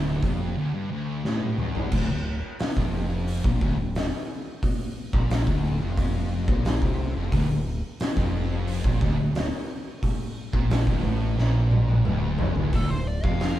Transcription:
0.00 0.21 D1 medium
0.00 0.22 D2 loud
0.22 0.54 F1 medium
0.22 0.56 F2 loud
0.22 kick loud
0.22 open hi-hat soft
0.57 0.73 D2 loud
0.74 0.90 G2 medium
0.92 1.24 D2 loud
1.25 1.58 A2 medium
1.25 snare medium
1.41 high tom medium
1.58 1.91 E2 medium
1.58 mid tom medium
1.75 floor tom loud
1.92 2.08 D1 loud
1.92 2.08 D2 loud
1.92 kick medium
1.92 crash loud
2.10 2.41 D1 medium
2.10 2.36 D2 medium
2.59 snare loud
2.59 open hi-hat medium
2.77 3.40 F1 medium
2.77 3.44 F2 loud
2.77 kick loud
3.27 open hi-hat medium
3.44 3.60 A#1 loud
3.44 3.60 A#2 medium
3.44 kick loud
3.61 3.77 D1 loud
3.61 3.77 D2 loud
3.61 kick loud
3.79 4.10 D1 medium
3.79 4.05 D2 medium
3.95 snare loud
3.95 open hi-hat medium
4.63 kick loud
4.63 open hi-hat medium
5.13 5.45 A#1 loud
5.13 5.46 A#2 loud
5.13 kick loud
5.30 snare loud
5.30 open hi-hat medium
5.47 5.80 D2 loud
5.47 kick loud
5.81 6.45 F1 loud
5.81 6.47 F2 loud
5.97 kick loud
5.97 open hi-hat medium
6.48 6.79 A#1 loud
6.48 6.81 A#2 loud
6.48 kick loud
6.65 snare loud
6.65 open hi-hat medium
6.82 7.13 C2 loud
6.82 7.15 C3 loud
6.82 kick loud
7.16 7.31 F1 loud
7.16 7.32 F2 loud
7.32 7.48 D1 loud
7.32 7.49 D2 loud
7.32 kick loud
7.32 open hi-hat medium
7.49 7.80 D1 medium
7.49 7.77 D2 medium
8.00 snare loud
8.00 open hi-hat medium
8.17 8.80 F1 loud
8.17 8.83 F2 loud
8.17 kick loud
8.67 open hi-hat medium
8.84 9.00 A#1 loud
8.84 9.00 A#2 loud
8.84 kick loud
9.01 9.17 D1 loud
9.01 9.17 D2 loud
9.01 kick loud
9.18 9.50 D1 medium
9.18 9.45 D2 medium
9.35 snare loud
9.35 open hi-hat medium
10.03 kick medium
10.03 open hi-hat medium
10.53 10.85 A#1 loud
10.53 10.86 A#2 loud
10.53 kick loud
10.70 snare loud
10.70 open hi-hat medium
10.87 11.03 D1 medium
10.87 11.03 D2 loud
10.87 kick loud
11.04 11.36 A1 loud
11.04 11.37 A2 loud
11.38 12.02 A#1 medium
11.38 12.05 A#2 loud
11.38 snare medium
11.71 high tom medium
11.88 high tom medium
12.05 12.37 D1 medium
12.05 12.38 D2 loud
12.05 mid tom medium
12.38 12.55 F1 medium
12.38 12.55 F2 loud
12.38 floor tom loud
12.56 12.72 D1 medium
12.56 12.72 D2 loud
12.56 floor tom loud
12.73 12.89 D1 loud
12.73 12.89 D2 loud
12.73 12.90 A4 medium
12.73 kick loud
12.73 open hi-hat medium
12.90 13.21 D1 medium
12.90 13.17 D2 medium
12.90 13.07 C5 medium
13.07 13.24 D5 medium
13.23 13.60 F1 loud
13.23 13.60 F2 loud
13.23 13.60 F5 medium
13.23 kick loud
13.40 snare loud
13.40 open hi-hat medium

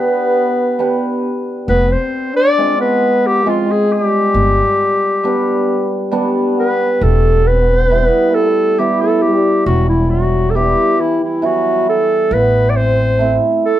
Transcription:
0.00 0.34 B3 soft
0.00 1.23 B3 medium
0.00 0.34 D4 medium
0.00 0.34 G4 medium
0.00 1.19 B4 medium
0.79 1.23 B3 medium
0.79 1.23 D4 medium
0.79 1.24 G4 medium
1.67 1.94 F1 loud
1.67 1.90 B3 medium
1.67 1.94 B4 loud
1.89 2.35 C4 medium
1.89 2.35 C5 medium
2.34 2.77 D4 medium
2.34 2.77 D5 loud
2.58 3.45 G#3 medium
2.58 3.02 C4 medium
2.58 3.02 F4 medium
2.78 3.46 B3 medium
2.78 3.28 B4 medium
3.27 3.50 G4 medium
3.44 3.68 F3 medium
3.44 4.39 G#3 medium
3.44 3.90 C4 medium
3.44 3.91 F4 medium
3.48 3.73 F4 medium
3.67 3.91 G#3 medium
3.71 3.94 G#4 medium
3.89 6.12 G3 medium
3.89 6.13 G4 medium
4.34 4.61 G1 medium
5.24 6.10 G3 medium
5.24 5.68 B3 medium
5.24 5.68 D4 medium
6.12 7.06 G3 medium
6.12 6.56 B3 medium
6.12 6.57 D4 medium
6.57 6.92 B3 medium
6.57 7.05 B4 medium
6.92 7.02 B3 medium
7.01 8.07 E1 loud
7.01 7.45 A3 medium
7.01 7.49 A4 medium
7.44 7.53 B3 medium
7.44 8.36 B4 loud
7.51 7.63 C4 medium
7.61 7.70 B3 medium
7.68 7.78 C4 medium
7.76 7.86 B3 medium
7.85 7.93 C4 medium
7.90 8.77 G3 medium
7.90 8.34 B3 soft
7.90 8.02 B3 medium
7.90 8.35 E4 medium
8.00 8.09 C4 medium
8.08 8.35 B3 medium
8.34 8.77 A3 medium
8.34 8.80 A4 medium
8.78 8.98 G3 medium
8.78 10.54 G3 medium
8.78 9.23 B3 medium
8.78 9.23 E4 medium
8.78 9.02 G4 medium
9.00 9.21 A3 medium
9.00 9.23 A4 medium
9.22 9.69 G3 medium
9.22 9.65 G4 medium
9.66 10.72 E1 loud
9.66 9.89 F#3 medium
9.66 9.87 F#4 medium
9.89 10.11 E3 medium
9.89 10.12 E4 medium
10.10 10.54 F#3 medium
10.10 10.52 F#4 medium
10.50 10.57 A4 medium
10.55 12.36 G3 medium
10.55 10.96 G3 medium
10.55 10.99 B3 medium
10.55 11.00 E4 medium
10.55 11.02 G4 loud
10.98 11.19 E3 medium
10.98 11.22 E4 medium
11.21 11.45 E3 medium
11.21 11.48 E4 medium
11.42 12.36 E3 medium
11.42 12.05 F#3 medium
11.42 11.87 B3 soft
11.42 11.87 E4 medium
11.46 11.88 F#4 medium
11.89 12.35 A4 medium
12.31 13.37 A1 loud
12.31 12.76 B3 medium
12.31 12.71 B4 loud
12.70 12.78 D5 medium
12.75 13.37 C4 medium
12.75 13.38 C5 loud
13.19 13.63 A3 medium
13.19 13.64 C4 medium
13.19 13.64 E4 medium
13.65 13.80 A3 medium
13.65 13.80 A4 loud

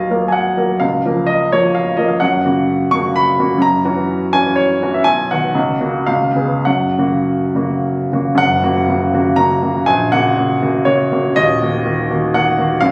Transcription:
0.00 0.85 D#2 medium
0.00 0.11 F#3 soft
0.00 0.11 A#3 soft
0.00 0.11 A#4 soft
0.00 0.86 D#5 medium
0.00 0.27 F5 medium
0.11 0.55 F#3 soft
0.11 0.55 A#3 soft
0.11 0.55 A#4 soft
0.28 0.35 G#5 medium
0.32 0.81 F#5 medium
0.57 0.79 F#3 soft
0.57 0.80 A#3 soft
0.57 0.80 A#4 soft
0.80 1.05 C#2 medium
0.80 1.29 F5 medium
1.06 1.49 F3 soft
1.06 1.49 A#3 soft
1.06 1.49 A#4 medium
1.27 1.52 D#5 medium
1.52 1.95 F3 medium
1.52 1.95 A#3 medium
1.52 1.95 A#4 soft
1.52 1.76 C#5 medium
1.75 1.98 F5 medium
1.97 2.19 F3 soft
1.97 2.19 A#3 soft
1.97 2.20 A#4 medium
1.97 2.09 D#5 medium
2.08 2.21 F5 medium
2.20 2.44 F#2 medium
2.20 2.92 F#5 medium
2.45 2.89 C#3 medium
2.45 2.89 A#3 medium
2.45 2.89 F#4 medium
2.91 3.35 C#3 medium
2.91 3.35 A#3 medium
2.91 3.35 F#4 medium
2.91 3.15 C#6 loud
3.16 3.62 B5 medium
3.40 3.60 C#3 medium
3.40 3.61 A#3 medium
3.40 3.61 F#4 medium
3.58 3.83 F#2 medium
3.58 4.34 A#5 loud
3.85 4.30 E3 medium
3.85 4.30 C#4 medium
3.85 4.30 F#4 medium
4.33 4.79 E3 medium
4.33 4.79 C#4 medium
4.33 4.79 F#4 medium
4.33 4.58 G#5 loud
4.56 4.93 C#5 medium
4.82 5.04 E3 medium
4.82 5.04 C#4 medium
4.82 5.04 F#4 medium
4.94 5.06 E5 medium
5.04 5.30 B1 medium
5.04 5.30 G#5 loud
5.31 5.53 D#3 medium
5.31 5.54 B3 medium
5.31 5.54 F#4 medium
5.31 6.08 F#5 medium
5.55 5.80 C#2 medium
5.80 6.05 C#3 medium
5.80 6.05 A#3 medium
5.80 6.06 F#4 medium
6.06 6.35 C#2 medium
6.06 6.66 F5 medium
6.35 6.63 C#3 soft
6.35 6.63 B3 soft
6.35 6.64 G#4 soft
6.65 6.96 F#2 medium
6.65 8.12 F#5 medium
6.99 7.53 C#3 soft
6.99 7.53 A#3 medium
6.99 7.53 F#4 medium
7.55 8.08 C#3 medium
7.55 8.09 A#3 medium
7.55 8.09 F#4 medium
8.12 8.37 C#3 soft
8.12 8.37 A#3 soft
8.12 8.37 F#4 medium
8.35 8.63 F#1 medium
8.35 8.61 F#2 medium
8.35 9.38 F#5 loud
8.63 8.86 C#3 medium
8.63 8.86 A#3 medium
8.63 8.86 F#4 medium
8.88 9.11 C#3 medium
8.88 9.11 A#3 medium
8.88 9.11 F#4 medium
9.14 9.35 C#3 medium
9.14 9.36 A#3 medium
9.14 9.36 F#4 medium
9.36 9.60 C#3 medium
9.36 9.60 A#3 medium
9.36 9.60 F#4 medium
9.36 9.86 A#5 loud
9.62 9.85 C#3 soft
9.62 9.85 A#3 medium
9.62 9.85 F#4 medium
9.86 10.11 A#1 medium
9.86 10.11 G#5 loud
10.12 10.34 C#3 medium
10.12 10.35 A#3 medium
10.12 10.35 F#4 medium
10.12 10.86 F#5 loud
10.36 10.58 C#3 medium
10.36 10.59 A#3 soft
10.36 10.59 F#4 medium
10.62 10.84 C#3 medium
10.62 10.84 A#3 medium
10.62 10.85 F#4 medium
10.85 11.08 C#3 medium
10.85 11.09 A#3 medium
10.85 11.09 F#4 medium
10.85 11.36 C#5 medium
11.12 11.34 C#3 medium
11.12 11.34 A#3 medium
11.12 11.35 F#4 medium
11.36 11.60 D#1 medium
11.36 11.61 D#2 medium
11.36 12.34 D#5 loud
11.62 11.83 D#3 medium
11.62 11.84 A#3 medium
11.62 11.84 F#4 medium
11.86 12.07 D#3 medium
11.86 12.07 A#3 medium
11.86 12.08 F#4 medium
12.11 12.32 D#3 medium
12.11 12.32 A#3 medium
12.11 12.32 F#4 medium
12.34 12.56 D#3 medium
12.34 12.56 A#3 medium
12.34 12.57 F#4 medium
12.34 12.81 F#5 loud
12.58 12.79 D#3 medium
12.58 12.79 A#3 medium
12.58 12.80 F#4 medium
12.81 12.92 F#1 medium
12.81 12.92 F#2 medium
12.81 12.92 F5 loud

